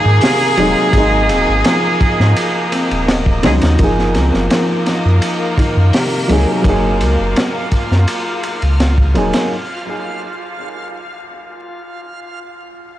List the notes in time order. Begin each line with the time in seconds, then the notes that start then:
Already playing: C#3 D#3 F3 F#3 G#3 A#3 C4 D#4 G#4 A#4 D#5
0.05 G#2
0.21 C3, snare, open hi-hat
0.57 D#1 F#3 G#3 C4 D#4, ride
0.93 G#1 G#3, kick, ride
0.98 D#4
1.29 D#1 C4, ride
1.49 G#1
1.64 F3, snare, ride
2.00 kick, ride
2.20 G#2, snare
2.36 ride
2.72 C4, ride
2.91 D#1, ride
3.08 snare, ride
3.26 kick
3.43 C#2 C#3 D#3 F#3 G#3 D#4 G#4, snare, ride
3.61 D#2, snare, ride
3.79 F#1 F3 A#3 D#4 F4 A#4 F5, kick, ride
3.83 G#4
3.99 snare
4.14 C#2 C4, snare, ride
4.34 F#1, snare
4.50 F3, snare, ride
4.86 snare, ride
5.05 F#2
5.22 ride
5.58 D#3, kick, ride
5.77 F#2
5.93 C3, snare, open hi-hat
6.28 C#2 F#3 A#3 C4 D#4 G#4, ride
6.62 F#1 F#3 A#3, kick, ride
6.67 D#4 G#4
7.01 C#2, ride
7.20 F#1
7.36 snare, ride
7.71 kick, ride
7.91 F#2, snare
8.08 ride
8.43 ride
8.62 C#2, ride
8.80 snare, ride
8.98 kick
9.14 D#1 F#3 A#3 D#4 G#4, ride
9.33 snare, ride